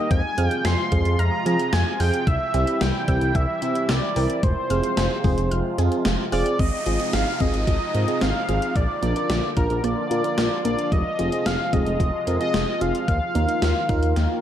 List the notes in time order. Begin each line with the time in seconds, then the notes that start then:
Already playing: D#5
0.11 F2 C3 F3 G#3 F4 G#5, kick, closed hi-hat
0.38 F2 C4 F4 G#4 F6, closed hi-hat
0.48 G5, closed hi-hat
0.65 F2 G#5 C6, snare, closed hi-hat
0.92 F2 G#3 C4 F4 G#4, kick, closed hi-hat
1.05 F2, closed hi-hat
1.19 F2 A#5 F6, closed hi-hat
1.46 F3 C4 F4 G#4 G#5, closed hi-hat
1.59 closed hi-hat
1.73 F2 G#3 G#5, snare, closed hi-hat
2.00 F2 C4 F4 G#4 G5 F6, open hi-hat
2.14 closed hi-hat
2.27 C2 E3 G3 E4 E5 E6, kick, closed hi-hat
2.54 C2 C4 E4 G4 G5, closed hi-hat
2.67 closed hi-hat
2.81 C2 G3 G5, snare, closed hi-hat
3.08 C2 C4 E4 G4 E6, kick, closed hi-hat
3.21 C2, closed hi-hat
3.35 C2 E5 G5, kick, closed hi-hat
3.62 C3 C4 E4 G4, closed hi-hat
3.75 closed hi-hat
3.89 C2 D5 E6, snare, closed hi-hat
4.16 C2 C4 E4 A#4 G5, open hi-hat
4.30 closed hi-hat
4.43 F1 C3 F3 G#3 F4 C5, kick, closed hi-hat
4.70 F1 C4 F4 G#4 F6, closed hi-hat
4.83 closed hi-hat
4.97 F1 G#5, snare, closed hi-hat
5.24 F1 G#3 C4 F4 G#4, kick, open hi-hat
5.38 F1, closed hi-hat
5.51 F1 F6, closed hi-hat
5.78 F2 C4 F4 G#4 G#5, closed hi-hat
5.92 closed hi-hat
6.05 F1 G#3, snare, closed hi-hat
6.32 F1 C4 F4 G#4 D5 F6, open hi-hat
6.46 closed hi-hat
6.59 G#1 C3 F3 G#3 C4 D#4 D#5, kick, closed hi-hat, downlifter
6.86 G#1 C4 F4 G#4, closed hi-hat
7.00 C4 F4 G#4, closed hi-hat
7.13 G#1 F5, snare, closed hi-hat
7.40 G#1 C4 F4 G#4 D#5, kick, closed hi-hat
7.54 G#1, closed hi-hat
7.67 G#1 F4 D#5, kick, closed hi-hat
7.94 G#2 C4 F4 A#4, closed hi-hat
8.08 C4 F4 G#4, closed hi-hat
8.21 G#1 C4 F5, snare, closed hi-hat
8.49 G#1 C4 F4 G#4, closed hi-hat
8.62 closed hi-hat
8.76 A#1 D3 A#3 F4 D5 F6, kick, closed hi-hat
9.03 A#1 A#3 D4 F4 A#4 D5, closed hi-hat
9.16 D4 F4 A#4, closed hi-hat
9.30 A#1, snare, closed hi-hat
9.57 A#1 D4 F4 A#4 F6, kick, closed hi-hat
9.70 A#1, closed hi-hat
9.84 A#1 A#3 D5, closed hi-hat
10.11 A#2 D4 F4 A#4, closed hi-hat
10.24 D4 F4 A#4, closed hi-hat
10.38 A#1 F6, snare, closed hi-hat
10.65 A#1 A#3 D4 F4 A#4 D5, closed hi-hat
10.79 closed hi-hat
10.92 F1 C3 G#3 D#5, kick, closed hi-hat
11.19 F1 C4 F4 G#4, closed hi-hat
11.32 C4 F4 G#4, closed hi-hat
11.46 F1 F5 F6, snare, closed hi-hat
11.73 F1 G#3 C4 F4 G#4 D#5, kick, closed hi-hat
11.87 F1, closed hi-hat
12.00 F1 F4, kick, closed hi-hat
12.27 F2 C4 F4 A#4, closed hi-hat
12.41 C4 F4 G#4 D#5, closed hi-hat
12.54 F1 G#3, snare, closed hi-hat
12.81 F1 C4 F4 G#4 F5, closed hi-hat
12.95 closed hi-hat
13.08 D#2 D#3 A#3 F6, kick, closed hi-hat
13.35 D#2 A#3 D#4 F4 A#4, closed hi-hat
13.48 D#4 F4 A#4, closed hi-hat
13.62 D#2, snare, closed hi-hat
13.89 D#2 D#4 F4 A#4 F6, kick, closed hi-hat
14.03 D#2, closed hi-hat
14.16 D#2 A#3, snare, closed hi-hat